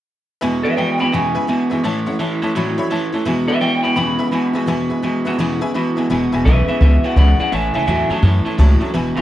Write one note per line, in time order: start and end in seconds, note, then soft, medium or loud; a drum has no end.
0.41 0.65 E2 medium
0.41 0.75 E2 medium
0.41 0.65 B2 medium
0.41 0.75 B2 medium
0.41 0.65 E3 medium
0.41 0.64 G#3 medium
0.41 0.64 B3 medium
0.41 0.62 E4 medium
0.41 0.55 B4 loud
0.41 0.55 E5 loud
0.41 0.56 G#5 loud
0.63 0.76 E3 soft
0.63 0.77 G#3 soft
0.63 0.77 B3 soft
0.63 0.77 E4 soft
0.63 0.77 B4 medium
0.63 0.72 B4 medium
0.63 0.76 E5 medium
0.63 0.72 E5 medium
0.63 0.73 G#5 medium
0.77 0.98 E2 medium
0.77 0.98 B2 medium
0.77 1.00 E3 medium
0.77 1.00 G#3 medium
0.77 1.01 B3 medium
0.77 1.00 E4 medium
0.77 0.91 B4 medium
0.77 0.98 D5 medium
0.77 0.91 E5 medium
0.77 0.99 G5 medium
0.77 0.91 G#5 medium
0.99 1.11 E2 medium
0.99 1.12 B2 medium
0.99 1.14 B3 medium
0.99 1.13 E4 soft
0.99 1.07 B4 medium
0.99 1.07 E5 medium
0.99 1.12 G5 medium
0.99 1.08 G#5 medium
0.99 1.13 B5 medium
1.03 1.13 E3 soft
1.03 1.13 G#3 soft
1.12 1.46 E2 medium
1.12 1.36 E2 medium
1.12 1.36 B2 medium
1.12 1.46 C#3 medium
1.12 1.36 E3 medium
1.12 1.36 G#3 medium
1.12 1.35 B3 medium
1.12 1.35 E4 medium
1.12 1.26 B4 medium
1.12 1.26 E5 medium
1.12 1.27 G#5 medium
1.12 2.17 G#5 loud
1.35 1.46 E3 soft
1.35 1.47 G#3 soft
1.35 1.48 B3 soft
1.35 1.48 E4 medium
1.35 1.43 B4 loud
1.35 1.43 E5 medium
1.35 1.43 G#5 loud
1.47 1.69 E2 medium
1.47 1.69 B2 loud
1.47 1.71 E3 medium
1.47 1.71 G#3 medium
1.47 1.71 B3 medium
1.47 1.69 E4 medium
1.47 1.61 B4 medium
1.47 1.62 E5 medium
1.47 1.62 G#5 loud
1.70 1.83 E2 medium
1.70 1.83 B2 medium
1.70 1.83 E3 medium
1.70 1.84 G#3 medium
1.70 1.84 B3 medium
1.70 1.84 E4 medium
1.70 1.78 B4 medium
1.70 1.79 E5 medium
1.70 1.79 G#5 medium
1.84 2.17 A2 medium
1.84 2.07 A2 medium
1.84 2.17 E3 medium
1.84 2.07 E3 medium
1.84 2.07 A3 medium
1.84 2.06 C#4 medium
1.84 2.05 E4 medium
1.84 1.98 C#5 loud
1.84 1.98 E5 medium
1.84 1.98 A5 loud
2.06 2.19 A3 soft
2.06 2.20 C#4 soft
2.06 2.19 E4 medium
2.06 2.14 C#5 medium
2.06 2.14 E5 medium
2.06 2.15 F#5 medium
2.19 2.40 A2 medium
2.19 2.40 E3 loud
2.19 2.42 E3 medium
2.19 2.42 A3 medium
2.19 2.42 C#4 medium
2.19 2.41 E4 medium
2.19 2.33 C#5 medium
2.19 2.33 E5 medium
2.19 2.34 A5 medium
2.42 2.54 A2 medium
2.42 2.54 E3 medium
2.42 2.55 A3 soft
2.42 2.55 C#4 soft
2.42 2.55 E4 medium
2.42 2.50 C#5 medium
2.42 2.50 E5 medium
2.42 2.51 A5 loud
2.55 2.88 A2 medium
2.55 2.78 A2 medium
2.55 2.78 E3 medium
2.55 2.88 F#3 medium
2.55 2.78 A3 medium
2.55 2.77 C#4 loud
2.55 2.76 E4 loud
2.55 2.69 C#5 medium
2.55 2.69 E5 medium
2.55 2.70 B5 loud
2.77 2.89 A3 soft
2.77 2.90 C#4 medium
2.77 2.90 E4 medium
2.77 2.85 C#5 loud
2.77 2.86 E5 loud
2.77 2.86 B5 loud
2.90 3.11 A2 medium
2.90 3.13 E3 medium
2.90 3.11 E3 loud
2.90 3.13 A3 medium
2.90 3.12 C#4 medium
2.90 3.11 E4 medium
2.90 3.04 C#5 loud
2.90 3.04 E5 loud
2.90 3.05 A5 loud
3.12 3.25 A2 medium
3.12 3.25 E3 medium
3.12 3.25 A3 soft
3.12 3.26 C#4 medium
3.12 3.25 E4 medium
3.12 3.21 C#5 medium
3.12 3.21 E5 medium
3.12 3.22 A5 medium
3.25 3.48 E2 medium
3.25 3.59 E2 medium
3.25 3.48 B2 medium
3.25 3.59 B2 medium
3.25 3.49 E3 loud
3.25 3.48 G#3 medium
3.25 3.48 B3 medium
3.25 3.47 E4 medium
3.25 3.39 B4 loud
3.25 3.40 E5 medium
3.25 3.40 G#5 loud
3.48 3.60 E3 soft
3.48 3.60 G#3 soft
3.48 3.60 B3 medium
3.48 3.61 E4 medium
3.48 3.60 B4 medium
3.48 3.56 B4 medium
3.48 3.61 E5 medium
3.48 3.57 E5 medium
3.48 3.57 F#5 medium
3.61 3.82 E2 medium
3.61 3.82 B2 medium
3.61 3.84 E3 medium
3.61 3.84 G#3 medium
3.61 3.84 B3 medium
3.61 3.82 E4 medium
3.61 3.75 B4 medium
3.61 3.82 D5 medium
3.61 3.75 E5 medium
3.61 3.82 G5 medium
3.61 3.76 G#5 medium
3.83 3.96 E2 medium
3.83 3.96 B2 medium
3.83 3.95 E3 soft
3.83 3.96 G#3 soft
3.83 3.96 B3 soft
3.83 3.96 E4 soft
3.83 3.92 B4 medium
3.83 3.92 E5 medium
3.83 3.95 G5 medium
3.83 3.92 G#5 medium
3.83 3.95 B5 medium
3.96 4.19 E2 medium
3.96 4.30 E2 medium
3.96 4.20 B2 medium
3.96 4.30 C#3 loud
3.96 4.19 E3 medium
3.96 4.19 G#3 medium
3.96 4.18 B3 medium
3.96 4.17 E4 medium
3.96 4.10 B4 medium
3.96 4.11 E5 medium
3.96 4.11 G#5 medium
3.96 5.00 B5 medium
4.19 4.30 E3 soft
4.19 4.30 G#3 soft
4.19 4.31 B3 soft
4.19 4.32 E4 medium
4.19 4.27 B4 loud
4.19 4.27 E5 loud
4.19 4.28 B5 loud
4.31 4.53 E2 medium
4.31 4.53 B2 medium
4.31 4.54 E3 medium
4.31 4.54 G#3 medium
4.31 4.53 B3 medium
4.31 4.52 E4 medium
4.31 4.46 B4 medium
4.31 4.46 E5 medium
4.31 4.47 G#5 loud
4.53 4.67 E2 medium
4.53 4.67 B2 medium
4.53 4.66 E3 medium
4.53 4.66 G#3 medium
4.53 4.67 B3 medium
4.53 4.67 E4 medium
4.53 4.63 B4 medium
4.53 4.63 E5 medium
4.53 4.63 G#5 medium
4.66 4.90 E2 medium
4.66 5.01 E2 medium
4.66 4.90 B2 medium
4.66 5.01 B2 medium
4.66 4.90 E3 medium
4.66 4.90 G#3 medium
4.66 4.89 B3 medium
4.66 4.89 E4 medium
4.66 4.82 B4 loud
4.66 4.82 E5 loud
4.66 4.82 G#5 loud
4.90 5.01 E3 soft
4.90 5.02 G#3 soft
4.90 5.03 B3 medium
4.90 5.03 E4 medium
4.90 4.98 B4 medium
4.90 4.98 E5 medium
4.90 4.99 G#5 medium
5.02 5.24 E2 medium
5.02 5.24 B2 medium
5.02 5.26 E3 medium
5.02 5.25 G#3 medium
5.02 5.25 B3 medium
5.02 5.24 E4 medium
5.02 5.17 B4 medium
5.02 5.17 E5 medium
5.02 5.17 G#5 medium
5.25 5.38 E2 medium
5.25 5.38 B2 medium
5.25 5.38 E3 soft
5.25 5.38 G#3 medium
5.25 5.38 B3 medium
5.25 5.38 E4 medium
5.25 5.33 B4 loud
5.25 5.34 E5 medium
5.25 5.34 F#5 loud
5.38 5.62 E2 medium
5.38 5.72 E2 medium
5.38 5.62 B2 medium
5.38 5.73 C#3 medium
5.38 5.62 E3 loud
5.38 5.62 G#3 medium
5.38 5.61 B3 loud
5.38 5.60 E4 loud
5.38 5.53 B4 medium
5.38 5.53 E5 medium
5.38 5.53 G#5 medium
5.61 5.73 E3 soft
5.61 5.74 G#3 soft
5.61 5.74 B3 soft
5.61 5.74 E4 medium
5.61 5.69 B4 loud
5.61 5.69 E5 loud
5.61 5.70 G#5 loud
5.74 5.95 E2 medium
5.74 5.96 B2 medium
5.74 5.97 E3 medium
5.74 5.97 G#3 medium
5.74 5.96 B3 medium
5.74 5.96 E4 medium
5.74 5.88 B4 loud
5.74 5.89 E5 loud
5.74 5.89 B5 loud
5.96 6.09 E2 medium
5.96 6.09 B2 medium
5.96 6.09 E3 medium
5.96 6.09 G#3 medium
5.96 6.09 B3 medium
5.96 6.10 E4 medium
5.96 6.04 B4 medium
5.96 6.05 E5 medium
5.96 6.05 G#5 medium
6.10 6.31 E1 medium
6.10 6.33 E2 medium
6.10 6.31 E2 medium
6.10 6.33 B2 medium
6.10 6.31 B2 medium
6.10 6.33 E3 medium
6.10 6.33 G#3 medium
6.10 6.33 B3 medium
6.10 6.32 E4 medium
6.10 6.24 B4 loud
6.10 6.24 E5 loud
6.10 6.24 G#5 loud
6.32 6.45 E1 medium
6.32 6.45 E2 medium
6.32 6.45 B2 medium
6.32 6.46 E3 medium
6.32 6.47 G#3 medium
6.32 6.46 B3 medium
6.32 6.46 E4 medium
6.32 6.40 B4 loud
6.32 6.40 E5 loud
6.32 6.41 G#5 loud
6.45 6.67 B1 medium
6.45 6.69 E2 medium
6.45 6.67 E2 medium
6.45 6.69 B2 medium
6.45 6.67 C#3 medium
6.45 6.69 E3 medium
6.45 6.69 G#3 medium
6.45 6.68 B3 medium
6.45 6.67 E4 medium
6.45 6.59 B4 medium
6.45 6.66 B4 medium
6.45 6.59 E5 medium
6.45 6.67 E5 medium
6.45 6.59 G#5 medium
6.67 6.80 E2 medium
6.67 6.80 C#3 medium
6.67 6.79 E3 soft
6.67 6.81 G#3 soft
6.67 6.81 B3 soft
6.67 6.81 E4 soft
6.67 6.80 B4 medium
6.67 6.76 B4 medium
6.67 6.76 E5 medium
6.67 6.81 E5 medium
6.67 6.76 G#5 medium
6.67 muted upright bass stroke medium
6.80 7.02 C#2 loud
6.80 7.02 E2 medium
6.80 7.02 B2 medium
6.80 7.04 E3 medium
6.80 7.03 G#3 medium
6.80 7.03 B3 medium
6.80 7.02 E4 medium
6.80 6.94 B4 medium
6.80 7.04 B4 medium
6.80 6.95 E5 medium
6.80 7.05 E5 medium
6.80 6.95 G#5 medium
7.03 7.15 E2 medium
7.03 7.16 B2 medium
7.03 7.16 E3 soft
7.03 7.16 G#3 soft
7.03 7.16 B3 medium
7.03 7.16 E4 medium
7.03 7.12 B4 medium
7.03 7.16 D5 medium
7.03 7.12 E5 medium
7.03 7.17 F#5 medium
7.03 7.12 G#5 medium
7.03 muted upright bass stroke medium
7.16 7.37 C#2 loud
7.16 7.39 E2 medium
7.16 7.37 E2 medium
7.16 7.39 B2 medium
7.16 7.38 C#3 loud
7.16 7.40 E3 medium
7.16 7.40 G#3 medium
7.16 7.39 B3 medium
7.16 7.38 E4 medium
7.16 7.30 B4 medium
7.16 7.38 D5 medium
7.16 7.31 E5 medium
7.16 7.39 F#5 medium
7.16 7.31 B5 loud
7.39 7.51 E2 medium
7.39 7.51 C#3 medium
7.39 7.51 E3 soft
7.39 7.52 G#3 soft
7.39 7.52 B3 medium
7.39 7.52 E4 medium
7.39 7.47 B4 medium
7.39 7.52 D5 medium
7.39 7.47 E5 medium
7.39 7.53 F#5 medium
7.39 7.48 G#5 medium
7.39 muted upright bass stroke medium
7.52 7.73 A1 loud
7.52 7.75 A2 medium
7.52 7.73 A2 medium
7.52 7.75 E3 medium
7.52 7.73 E3 medium
7.52 7.75 A3 medium
7.52 7.74 C#4 medium
7.52 7.72 E4 medium
7.52 7.66 C#5 medium
7.52 7.74 E5 medium
7.52 7.66 E5 medium
7.52 7.74 G#5 medium
7.52 7.66 A5 loud
7.74 7.87 C#2 medium
7.74 7.86 A2 medium
7.74 7.87 E3 loud
7.74 7.87 A3 soft
7.74 7.87 C#4 soft
7.74 7.87 E4 soft
7.74 7.82 C#5 medium
7.74 7.86 E5 medium
7.74 7.82 E5 medium
7.74 7.86 G#5 medium
7.74 7.83 A5 loud
7.86 8.08 E2 medium
7.86 8.08 A2 medium
7.86 8.10 A2 medium
7.86 8.10 E3 medium
7.86 8.08 F#3 medium
7.86 8.11 A3 medium
7.86 8.10 C#4 medium
7.86 8.09 E4 medium
7.86 8.00 C#5 medium
7.86 8.08 E5 medium
7.86 8.01 E5 medium
7.86 8.11 G#5 medium
7.86 8.01 A5 medium
8.10 8.22 F#2 medium
8.10 8.21 A2 medium
8.10 8.22 F#3 medium
8.10 8.21 A3 soft
8.10 8.23 C#4 soft
8.10 8.23 E4 medium
8.10 8.18 C#5 medium
8.10 8.18 E5 medium
8.10 8.19 G#5 medium
8.10 8.45 A5 loud
8.22 8.44 F#2 loud
8.22 8.43 A2 medium
8.22 8.45 E3 medium
8.22 8.44 E3 loud
8.22 8.45 A3 medium
8.22 8.46 C#4 medium
8.22 8.45 E4 medium
8.22 8.37 C#5 medium
8.22 8.37 E5 medium
8.22 8.37 A5 medium
8.45 8.56 A2 medium
8.45 8.57 E3 medium
8.45 8.58 A3 soft
8.45 8.58 C#4 soft
8.45 8.59 E4 soft
8.45 8.53 C#5 medium
8.45 8.54 E5 medium
8.45 8.54 A5 medium
8.45 muted upright bass stroke medium
8.58 8.80 C#2 medium
8.58 8.79 A2 medium
8.58 8.81 A2 medium
8.58 8.82 E3 medium
8.58 8.79 F#3 medium
8.58 8.82 A3 medium
8.58 8.81 C#4 loud
8.58 8.80 E4 loud
8.58 8.72 C#5 loud
8.58 8.72 E5 loud
8.58 8.73 A5 loud
8.80 8.92 A2 medium
8.80 8.92 F#3 medium
8.80 8.94 A3 medium
8.80 8.95 C#4 medium
8.80 8.94 E4 medium
8.80 8.89 C#5 medium
8.80 8.89 E5 medium
8.80 8.89 A5 loud
8.80 muted upright bass stroke medium
8.93 9.15 E1 loud
8.93 9.14 E2 medium
8.93 9.17 E2 medium
8.93 9.14 B2 medium
8.93 9.17 B2 medium
8.93 9.17 E3 medium
8.93 9.16 G#3 medium
8.93 9.16 B3 medium
8.93 9.15 E4 medium
8.93 9.07 B4 loud
8.93 9.08 E5 loud
8.93 9.08 G#5 loud
9.16 9.21 E1 medium
9.16 9.21 E2 medium
9.16 9.21 B2 medium
9.16 9.21 G#3 soft
9.16 9.21 B3 soft
9.16 9.21 E4 medium
9.16 9.21 G4 medium
9.16 9.21 B4 medium
9.16 9.21 E5 medium
9.16 9.21 G#5 medium